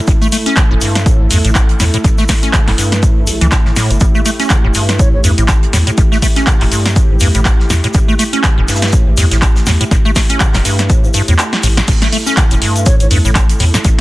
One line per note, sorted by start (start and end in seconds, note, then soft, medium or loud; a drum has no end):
0.00 11.84 A3 medium
0.00 11.84 E4 medium
0.00 4.00 A4 medium
0.07 0.17 A1 loud
0.07 0.12 A2 medium
0.07 kick loud
0.07 closed hi-hat soft
0.07 shaker medium
0.21 0.27 A3 loud
0.21 shaker soft
0.32 0.37 A3 loud
0.32 open hi-hat loud
0.32 shaker loud
0.32 shaker medium
0.46 0.58 C#4 loud
0.46 snare medium
0.46 closed hi-hat medium
0.46 shaker soft
0.56 0.65 B2 medium
0.56 kick loud
0.56 snare loud
0.56 clap loud
0.56 closed hi-hat medium
0.56 shaker medium
0.71 0.78 E1 medium
0.71 0.74 A2 loud
0.81 1.08 G2 medium
0.81 open hi-hat loud
0.81 shaker medium
0.95 snare medium
0.95 closed hi-hat medium
0.95 shaker soft
1.06 1.22 A2 medium
1.06 kick loud
1.06 closed hi-hat soft
1.06 shaker soft
1.06 shaker medium
1.20 1.27 A1 medium
1.20 1.26 G2 loud
1.30 1.40 E2 loud
1.30 1.38 G2 loud
1.30 open hi-hat loud
1.30 shaker medium
1.45 1.74 A1 loud
1.45 1.50 A2 medium
1.45 closed hi-hat medium
1.45 shaker soft
1.55 kick loud
1.55 snare loud
1.55 clap loud
1.55 closed hi-hat medium
1.55 shaker medium
1.69 closed hi-hat soft
1.80 1.89 E2 medium
1.80 1.84 A2 loud
1.80 snare medium
1.80 open hi-hat loud
1.80 shaker medium
1.94 1.97 A2 loud
1.94 closed hi-hat medium
1.94 shaker soft
2.04 2.14 A1 loud
2.04 2.09 A2 medium
2.04 kick loud
2.04 closed hi-hat soft
2.04 shaker medium
2.04 shaker soft
2.18 2.24 A3 loud
2.18 snare soft
2.18 shaker soft
2.29 2.34 A3 loud
2.29 kick medium
2.29 snare medium
2.29 open hi-hat loud
2.29 shaker medium
2.42 2.55 C#4 loud
2.42 snare soft
2.42 closed hi-hat medium
2.42 shaker soft
2.53 2.61 B2 medium
2.53 kick loud
2.53 snare loud
2.53 clap loud
2.53 closed hi-hat soft
2.53 shaker medium
2.67 2.75 E1 medium
2.67 2.71 A2 loud
2.67 snare medium
2.67 clap soft
2.67 open hi-hat medium
2.78 3.04 G2 medium
2.78 open hi-hat loud
2.78 shaker medium
2.78 shaker loud
2.92 snare medium
2.92 closed hi-hat medium
2.92 shaker soft
3.03 3.18 A2 medium
3.03 kick loud
3.03 closed hi-hat soft
3.03 shaker medium
3.03 shaker soft
3.17 3.29 G2 loud
3.27 3.39 A1 loud
3.27 open hi-hat loud
3.27 shaker loud
3.27 shaker medium
3.41 3.49 C#2 medium
3.41 3.47 E3 loud
3.41 closed hi-hat medium
3.41 shaker soft
3.51 3.56 A2 medium
3.51 kick loud
3.51 snare loud
3.51 clap loud
3.51 closed hi-hat soft
3.51 shaker medium
3.65 3.72 A2 medium
3.65 snare medium
3.76 3.92 A2 loud
3.76 snare medium
3.76 open hi-hat loud
3.76 shaker medium
3.90 3.98 G1 medium
3.90 3.94 D3 medium
3.90 closed hi-hat medium
3.90 shaker soft
4.00 4.11 A1 loud
4.00 4.06 A2 medium
4.00 11.87 G4 loud
4.00 kick loud
4.00 closed hi-hat soft
4.00 shaker medium
4.15 4.21 A3 loud
4.15 shaker soft
4.26 4.30 A3 loud
4.26 open hi-hat loud
4.26 shaker medium
4.40 4.52 C#4 loud
4.40 snare medium
4.40 closed hi-hat medium
4.40 shaker soft
4.50 4.58 B2 medium
4.50 kick loud
4.50 snare loud
4.50 clap loud
4.50 closed hi-hat medium
4.50 shaker medium
4.64 4.72 E1 medium
4.64 4.68 A2 loud
4.74 5.01 G2 medium
4.74 open hi-hat loud
4.74 shaker medium
4.89 snare medium
4.89 closed hi-hat medium
4.89 shaker soft
4.99 5.15 A2 medium
4.99 5.08 C#5 medium
4.99 kick loud
4.99 closed hi-hat soft
4.99 shaker medium
4.99 shaker soft
5.13 5.21 A1 medium
5.13 5.19 G2 loud
5.13 5.20 C#5 medium
5.24 5.34 E2 loud
5.24 5.32 G2 loud
5.24 open hi-hat loud
5.24 shaker medium
5.38 5.68 A1 loud
5.38 5.44 A2 medium
5.38 closed hi-hat medium
5.38 shaker soft
5.48 kick loud
5.48 snare loud
5.48 clap loud
5.48 closed hi-hat medium
5.48 shaker medium
5.63 closed hi-hat soft
5.73 5.83 E2 medium
5.73 5.78 A2 loud
5.73 snare medium
5.73 open hi-hat loud
5.73 shaker medium
5.87 5.91 A2 loud
5.87 closed hi-hat medium
5.87 shaker soft
5.98 6.07 A1 loud
5.98 6.02 A2 medium
5.98 kick loud
5.98 closed hi-hat soft
5.98 shaker medium
5.98 shaker soft
6.12 6.18 A3 loud
6.12 snare soft
6.12 shaker soft
6.22 6.27 A3 loud
6.22 kick medium
6.22 open hi-hat loud
6.22 shaker medium
6.36 6.49 C#4 loud
6.36 snare medium
6.36 closed hi-hat medium
6.36 shaker soft
6.47 6.55 B2 medium
6.47 kick loud
6.47 snare loud
6.47 clap loud
6.47 closed hi-hat medium
6.47 shaker medium
6.47 shaker soft
6.61 6.68 E1 medium
6.61 6.64 A2 loud
6.61 clap soft
6.61 open hi-hat medium
6.72 6.98 G2 medium
6.72 open hi-hat loud
6.72 shaker medium
6.86 snare medium
6.86 closed hi-hat medium
6.86 shaker soft
6.96 7.12 A2 medium
6.96 kick loud
6.96 closed hi-hat soft
6.96 shaker medium
7.10 7.17 A1 medium
7.10 7.16 G2 loud
7.20 7.30 E2 loud
7.20 7.28 G2 loud
7.20 open hi-hat loud
7.20 shaker medium
7.34 7.65 A1 loud
7.34 7.40 A2 medium
7.34 closed hi-hat medium
7.34 shaker soft
7.45 kick loud
7.45 snare loud
7.45 clap loud
7.45 closed hi-hat medium
7.45 shaker medium
7.45 shaker soft
7.60 snare medium
7.70 7.80 E2 medium
7.70 7.75 A2 loud
7.70 snare medium
7.70 open hi-hat loud
7.70 shaker medium
7.84 7.87 A2 loud
7.84 closed hi-hat medium
7.84 shaker soft
7.94 8.04 A1 loud
7.94 7.99 A2 medium
7.94 kick loud
7.94 closed hi-hat medium
7.94 shaker medium
8.08 8.14 A3 loud
8.08 shaker soft
8.19 8.24 A3 loud
8.19 open hi-hat loud
8.19 shaker medium
8.33 8.45 C#4 loud
8.33 closed hi-hat medium
8.33 shaker soft
8.44 8.51 B2 medium
8.44 kick loud
8.44 snare loud
8.44 clap loud
8.44 closed hi-hat medium
8.44 shaker soft
8.44 shaker medium
8.58 8.65 E1 medium
8.58 8.61 A2 loud
8.68 8.94 G2 medium
8.68 snare medium
8.68 open hi-hat loud
8.68 shaker medium
8.75 snare medium
8.75 shaker medium
8.82 snare medium
8.82 closed hi-hat medium
8.82 shaker soft
8.87 snare medium
8.87 shaker medium
8.92 9.08 A2 medium
8.92 kick loud
8.92 closed hi-hat medium
8.92 shaker medium
9.07 9.14 A1 medium
9.07 9.13 G2 loud
9.17 9.27 E2 loud
9.17 9.25 G2 loud
9.17 snare loud
9.17 open hi-hat loud
9.17 shaker medium
9.31 9.61 A1 loud
9.31 9.37 A2 medium
9.31 snare loud
9.31 closed hi-hat medium
9.31 shaker medium
9.31 shaker soft
9.42 kick loud
9.42 snare loud
9.42 clap loud
9.42 closed hi-hat medium
9.42 shaker soft
9.42 shaker medium
9.56 snare loud
9.56 shaker medium
9.66 9.76 E2 medium
9.66 9.71 A2 loud
9.66 snare medium
9.66 snare loud
9.66 open hi-hat loud
9.66 shaker medium
9.81 9.84 A2 loud
9.81 closed hi-hat medium
9.81 shaker soft
9.91 10.01 A1 loud
9.91 9.96 A2 medium
9.91 kick loud
9.91 snare soft
9.91 closed hi-hat medium
9.91 shaker soft
9.91 shaker medium
10.05 10.11 A3 loud
10.05 shaker soft
10.16 10.20 A3 loud
10.16 kick medium
10.16 snare medium
10.16 snare loud
10.16 open hi-hat loud
10.16 shaker medium
10.29 10.42 C#4 loud
10.29 closed hi-hat soft
10.29 closed hi-hat medium
10.29 shaker soft
10.40 10.48 B2 medium
10.40 kick loud
10.40 clap loud
10.40 closed hi-hat medium
10.40 shaker medium
10.54 10.62 E1 medium
10.54 10.58 A2 loud
10.54 snare loud
10.54 snare medium
10.54 clap soft
10.54 open hi-hat medium
10.54 shaker medium
10.54 shaker soft
10.65 10.91 G2 medium
10.65 closed hi-hat soft
10.65 open hi-hat loud
10.65 shaker medium
10.79 snare medium
10.79 closed hi-hat medium
10.79 shaker soft
10.79 shaker medium
10.89 11.05 A2 medium
10.89 kick loud
10.89 closed hi-hat medium
10.89 shaker loud
10.89 shaker medium
11.03 11.09 G2 loud
11.03 shaker soft
11.14 11.22 G2 loud
11.14 open hi-hat loud
11.14 shaker medium
11.28 11.36 E2 medium
11.28 11.34 A2 medium
11.28 closed hi-hat medium
11.28 shaker soft
11.38 snare loud
11.38 clap loud
11.38 closed hi-hat medium
11.38 shaker soft
11.38 shaker medium
11.53 snare medium
11.63 11.81 A1 medium
11.63 11.68 A2 loud
11.63 open hi-hat loud
11.63 shaker medium
11.77 11.81 A2 loud
11.77 snare medium
11.77 closed hi-hat medium
11.77 shaker soft
11.88 11.97 A1 loud
11.88 11.93 A2 medium
11.88 14.01 A3 medium
11.88 14.01 E4 medium
11.88 14.01 A4 loud
11.88 kick loud
11.88 closed hi-hat medium
11.88 crash loud
11.88 shaker medium
12.02 12.08 A3 loud
12.02 snare medium
12.02 closed hi-hat medium
12.02 shaker soft
12.12 12.17 A3 loud
12.12 open hi-hat loud
12.12 shaker medium
12.26 12.39 C#4 loud
12.26 snare medium
12.26 shaker medium
12.37 12.45 B2 medium
12.37 kick loud
12.37 snare loud
12.37 clap loud
12.37 closed hi-hat medium
12.37 shaker medium
12.51 12.58 E1 medium
12.51 12.55 A2 loud
12.51 closed hi-hat medium
12.51 shaker soft
12.62 12.88 G2 medium
12.62 open hi-hat loud
12.62 shaker medium
12.76 closed hi-hat soft
12.76 shaker medium
12.86 13.02 A2 medium
12.86 12.95 C#5 medium
12.86 kick loud
12.86 closed hi-hat medium
12.86 shaker loud
12.86 shaker medium
13.00 13.08 A1 medium
13.00 13.06 G2 loud
13.00 13.07 C#5 medium
13.00 closed hi-hat medium
13.00 shaker soft
13.11 13.20 E2 loud
13.11 13.19 G2 loud
13.11 open hi-hat loud
13.11 shaker medium
13.25 13.55 A1 loud
13.25 13.31 A2 medium
13.25 shaker medium
13.35 kick loud
13.35 snare loud
13.35 clap loud
13.35 closed hi-hat medium
13.35 shaker medium
13.49 closed hi-hat medium
13.49 closed hi-hat soft
13.49 shaker soft
13.59 13.70 E2 medium
13.59 13.65 A2 loud
13.59 open hi-hat loud
13.59 shaker medium
13.74 13.78 A2 loud
13.74 snare medium
13.74 shaker medium
13.84 13.94 A1 loud
13.84 13.89 A2 medium
13.84 kick loud
13.84 closed hi-hat medium
13.84 shaker medium